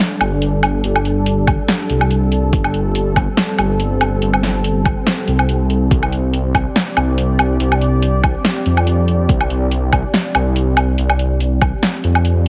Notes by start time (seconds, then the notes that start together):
Already playing: G3 D4 A4
0.21 G1, closed hi-hat, low woodblock
0.42 closed hi-hat
0.63 G1, closed hi-hat, low woodblock
0.84 G1, closed hi-hat
0.96 low woodblock
1.05 closed hi-hat
1.26 closed hi-hat
1.47 G1, kick, closed hi-hat, low woodblock
1.68 snare, closed hi-hat
1.90 C2, closed hi-hat
2.01 low woodblock
2.11 closed hi-hat
2.32 closed hi-hat
2.53 G1 C4, kick, closed hi-hat
2.64 low woodblock
2.74 closed hi-hat
2.95 closed hi-hat
3.16 G1, kick, closed hi-hat, low woodblock
3.37 snare, closed hi-hat
3.58 G1, closed hi-hat, low woodblock
3.80 closed hi-hat
4.01 G1, closed hi-hat, low woodblock
4.22 G1, closed hi-hat
4.33 low woodblock
4.43 snare, closed hi-hat
4.64 closed hi-hat
4.85 G1, kick, closed hi-hat, low woodblock
5.07 snare, closed hi-hat
5.27 C2, closed hi-hat
5.39 low woodblock
5.49 closed hi-hat
5.70 closed hi-hat
5.91 C2 G4 D5, kick, closed hi-hat
6.03 low woodblock
6.12 closed hi-hat
6.33 closed hi-hat
6.54 C2, kick, closed hi-hat, low woodblock
6.76 snare, closed hi-hat
6.97 C2, closed hi-hat, low woodblock
7.18 closed hi-hat
7.39 C2, closed hi-hat, low woodblock
7.60 C2, closed hi-hat
7.72 low woodblock
7.81 closed hi-hat
8.02 closed hi-hat
8.23 C2, kick, closed hi-hat, low woodblock
8.45 snare, closed hi-hat
8.66 F2, closed hi-hat
8.77 low woodblock
8.87 closed hi-hat
9.08 closed hi-hat
9.29 C2, kick, closed hi-hat
9.41 low woodblock
9.50 closed hi-hat
9.71 closed hi-hat
9.93 C2, kick, closed hi-hat, low woodblock
10.14 snare, closed hi-hat
10.35 C2, closed hi-hat, low woodblock
10.56 closed hi-hat
10.77 C2, closed hi-hat, low woodblock
10.98 C2, closed hi-hat
11.10 low woodblock
11.19 closed hi-hat
11.40 closed hi-hat
11.61 C2, kick, closed hi-hat, low woodblock
11.83 snare, closed hi-hat
12.04 F2, closed hi-hat
12.15 low woodblock
12.25 closed hi-hat